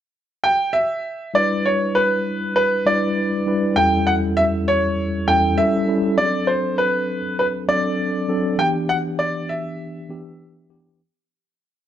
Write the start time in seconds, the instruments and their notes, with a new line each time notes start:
0.44 grand piano G5
0.73 grand piano E5
1.34 tine electric piano G3 D4 E4 B4, grand piano D5
1.66 grand piano C#5
1.95 grand piano B4
2.56 grand piano B4
2.86 tine electric piano G3 D4 E4 B4, grand piano D5
3.46 tine electric piano G3 D4 E4 B4
3.76 tine electric piano E2 G3 C#4 E4 A4, grand piano G5
4.07 grand piano F#5
4.37 grand piano E5
4.68 grand piano C#5
5.27 tine electric piano E2 G3 C#4 E4 A4, grand piano G5
5.57 tine electric piano G3 C#4 E4 A4, grand piano E5
5.87 tine electric piano G3 C#4 E4 A4
6.17 tine electric piano F#3 C4 D4 G#4, grand piano D5
6.25 tine electric piano A4
6.47 grand piano C5
6.78 grand piano B4
7.39 grand piano B4
7.68 tine electric piano F#3 C4 D4 A4, grand piano D5
8.28 tine electric piano F#3 C4 D4 A4
8.58 tine electric piano E3 B3 D4 G4, grand piano G5
8.89 grand piano F#5
9.19 grand piano D5
9.49 grand piano E5
10.09 tine electric piano E3 B3 D4 G4
10.69 tine electric piano E3 B3 D4 G4